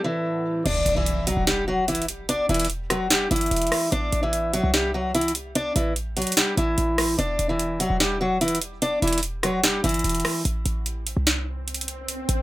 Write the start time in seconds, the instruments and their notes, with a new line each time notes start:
Already playing: string section A2 E3 C4 A4
0.04 steel-string acoustic guitar E3 E4
0.66 808-style bass E1, steel-string acoustic guitar D4 D5, closed hi-hat, crash, impact
0.86 808-style bass E1, closed hi-hat
0.96 steel-string acoustic guitar E3 E4
1.06 closed hi-hat
1.27 steel-string acoustic guitar F#3 F#4, closed hi-hat
1.37 808-style bass E1
1.47 steel-string acoustic guitar G3 G4, snare, closed hi-hat
1.68 steel-string acoustic guitar F#3 F#4
1.88 steel-string acoustic guitar E3 E4, closed hi-hat
1.95 closed hi-hat
2.02 closed hi-hat
2.08 closed hi-hat
2.29 steel-string acoustic guitar D4 D5, closed hi-hat
2.49 808-style bass E1, steel-string acoustic guitar E3 E4, closed hi-hat
2.54 closed hi-hat
2.60 closed hi-hat
2.65 closed hi-hat
2.70 closed hi-hat
2.90 steel-string acoustic guitar F#3 F#4, cross-stick, closed hi-hat
3.10 steel-string acoustic guitar G3 G4, snare, closed hi-hat
3.31 808-style bass G1, steel-string acoustic guitar E3 E4, closed hi-hat
3.36 closed hi-hat
3.41 closed hi-hat
3.46 closed hi-hat
3.51 808-style bass E1, closed hi-hat
3.56 closed hi-hat
3.62 closed hi-hat
3.67 closed hi-hat
3.72 cross-stick, open hi-hat
3.92 808-style bass A1, steel-string acoustic guitar D4 D5, closed hi-hat
4.12 808-style bass A1, closed hi-hat
4.23 steel-string acoustic guitar E3 E4
4.33 closed hi-hat
4.53 steel-string acoustic guitar F#3 F#4, closed hi-hat
4.64 808-style bass C2
4.74 steel-string acoustic guitar G3 G4, snare, closed hi-hat
4.94 steel-string acoustic guitar F#3 F#4
5.15 steel-string acoustic guitar E3 E4, closed hi-hat
5.21 closed hi-hat
5.28 closed hi-hat
5.35 closed hi-hat
5.55 steel-string acoustic guitar D4 D5, closed hi-hat
5.76 808-style bass A1, steel-string acoustic guitar E3 E4, closed hi-hat
5.96 closed hi-hat
6.17 steel-string acoustic guitar F#3 F#4, closed hi-hat
6.22 closed hi-hat
6.27 closed hi-hat
6.32 closed hi-hat
6.37 steel-string acoustic guitar G3 G4, snare
6.57 808-style bass A1, steel-string acoustic guitar E3 E4, closed hi-hat
6.78 808-style bass A1, closed hi-hat
6.98 cross-stick, open hi-hat
7.19 808-style bass E1, steel-string acoustic guitar D4 D5, closed hi-hat
7.39 808-style bass E1, closed hi-hat
7.49 steel-string acoustic guitar E3 E4
7.59 closed hi-hat
7.80 steel-string acoustic guitar F#3 F#4, closed hi-hat
7.90 808-style bass E1
8.00 steel-string acoustic guitar G3 G4, snare, closed hi-hat
8.21 steel-string acoustic guitar F#3 F#4
8.41 steel-string acoustic guitar E3 E4, closed hi-hat
8.48 closed hi-hat
8.55 closed hi-hat
8.62 closed hi-hat
8.82 steel-string acoustic guitar D4 D5, closed hi-hat
9.02 808-style bass E1, steel-string acoustic guitar E3 E4, closed hi-hat
9.07 closed hi-hat
9.13 closed hi-hat
9.18 closed hi-hat
9.23 closed hi-hat
9.43 steel-string acoustic guitar F#3 F#4, cross-stick, closed hi-hat
9.63 steel-string acoustic guitar G3 G4, snare, closed hi-hat
9.84 808-style bass G1, steel-string acoustic guitar E3 E4, closed hi-hat
9.89 closed hi-hat
9.94 closed hi-hat
9.99 closed hi-hat
10.04 808-style bass E1, closed hi-hat
10.09 closed hi-hat
10.15 closed hi-hat
10.20 closed hi-hat
10.25 cross-stick, open hi-hat
10.45 808-style bass A1, closed hi-hat, swell
10.66 808-style bass A1, closed hi-hat
10.86 closed hi-hat
11.07 closed hi-hat
11.17 808-style bass C2
11.27 snare, closed hi-hat
11.68 closed hi-hat
11.74 closed hi-hat
11.81 closed hi-hat
11.88 closed hi-hat
12.08 closed hi-hat
12.29 808-style bass A1, closed hi-hat